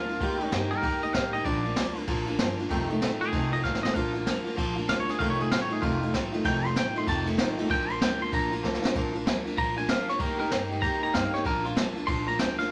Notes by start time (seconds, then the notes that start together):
Already playing: D2 F4
0.09 A#3 D4 F4, ride
0.21 D#2 D#3 A#3 D#4 G4, kick, ride
0.40 A#3 D#4 G4, ride
0.51 G2 D#3 A#3 D#4 G4, snare, ride
0.71 A#3 D#4 G4 A#4, ride
0.82 D#2 D#3 A#3 D#4 G4, kick, ride
1.01 A#3 D#4 G4 D#5, ride
1.13 A1 D#3 A#3 D#4 G4 F5, kick, snare, ride
1.33 A#3 D#4 G4 D#5, ride
1.44 A#1 A#2 F3 A#3 D4 F4 D5, kick, ride
1.64 A#3 D4 F4, ride
1.76 D2 F3 A#3 D4 F4, snare, ride
1.95 A#3 D4 F4, ride
2.07 A#1 A#2 F3 A#3 D4 F4, kick, ride
2.27 A#3 D4 F4, ride
2.39 G1 F3 A#3 D4 F4, snare, ride
2.59 A#3 D4 F4, ride
2.69 F1 F2 C3 D#3 A3 D#4 F4, kick, ride
2.89 D#3 A3 D#4 F4, ride
3.01 A1 D#3 A3 D#4 F4, snare, ride
3.20 D#3 A3 D#4 F4 G#4, ride
3.32 F1 F2 C3 D#3 A3 D#4 F4, kick, ride
3.52 D#3 A3 D#4 F4 D#5, ride
3.63 A1 D#3 A3 D#4 F4 F5, kick, snare
3.75 snare
3.83 D#3 A3 D#4 F4 D#5, snare
3.94 A#1 A#2 F3 A#3 D4 F4 F5, kick, ride
4.14 A#3 D4 F4, ride
4.25 D2 F3 A#3 D4 F4, snare, ride
4.44 A#3 D4 F4, ride
4.56 A#1 A#2 F3 A#3 D4 F4, kick, ride
4.76 A#3 D4 F4, ride
4.87 D2 F3 A#3 D4 F4 F5, snare, ride
5.00 C#5
5.07 A#3 D4 F4 G#4, snare, ride
5.19 F1 F2 C3 D#3 A3 D#4 F4 F5, kick, ride
5.30 C#5
5.38 D#3 A3 D#4 F4 G#4, ride
5.51 A1 D#3 A3 D#4 F4 F5, snare, ride
5.62 C#5
5.70 D#3 A3 D#4 F4 G#4, ride
5.81 F1 F2 C3 D#3 A3 D#4 F4, kick, ride
6.01 D#3 A3 D#4 F4, ride
6.13 A1 D#3 A3 D#4 F4, kick, snare, ride
6.32 D#3 A3 D#4 F4, ride
6.44 F1 F2 C3 D#3 A3 D#4 F4 G5, kick, ride
6.64 D#3 A3 D#4 F4 C6, ride
6.75 A1 D#3 A3 D#4 F4 G5, snare, ride
6.95 D#3 A3 D#4 F4 C6, ride
7.07 F1 F2 C3 D#3 A3 D#4 F4 A5, kick, ride
7.26 D#3 A3 D#4 F4, ride
7.38 A1 D#3 A3 D#4 F4, snare, ride
7.57 D#3 A3 D#4 F4, ride
7.68 A#1 A#2 F3 A#3 D4 F4 G5, kick, ride
7.89 A#3 D4 F4 C6, ride
7.99 D2 F3 A#3 D4 F4 G5, snare, ride
8.19 A#3 D4 F4 C6, ride
8.32 A#1 A#2 F3 A#3 D4 F4 A#5, kick, ride
8.51 A#3 D4 F4, ride
8.62 D2 F3 A#3 D4 F4, kick, snare
8.74 snare
8.82 A#3 D4 F4, snare
8.94 A#1 A#2 F3 A#3 D4 F4, kick, ride
9.13 A#3 D4 F4, ride
9.25 D2 F3 A#3 D4 F4, snare, ride
9.45 A#3 D4 F4, ride
9.56 A#1 A#2 F3 A#3 D4 F4 A#5, kick, ride
9.76 A#3 D4 F4 G#5, ride
9.87 D2 F3 A#3 D4 F4 F5, snare, ride
10.07 A#3 D4 F4 C#5, snare, ride
10.18 D#2 D#3 A#3 D#4 G4 A#4, kick, ride
10.38 A#3 D#4 G4 A#4, ride
10.49 G2 D#3 A#3 D#4 G4, snare, ride
10.70 A#3 D#4 G4, ride
10.81 D#2 D#3 A#3 D#4 G4 A#5, kick, ride
11.01 A#3 D#4 G4 A#5, ride
11.12 G2 D#3 A#3 D#4 G4 F5, kick, snare, ride
11.33 A#3 D#4 G4 C#5, snare, ride
11.44 A#1 A#2 F3 A#3 D4 F4 A#4, kick, ride
11.64 A#3 D4 F4, ride
11.75 D2 F3 A#3 D4 F4, snare, ride
11.96 A#3 D4 F4, ride
12.07 A#1 A#2 F3 A#3 D4 F4 C6, kick, ride
12.27 A#3 D4 F4 A#5, ride
12.38 D2 F3 A#3 D4 F4 G5, snare, ride
12.58 A#3 D4 F4 F5, snare, ride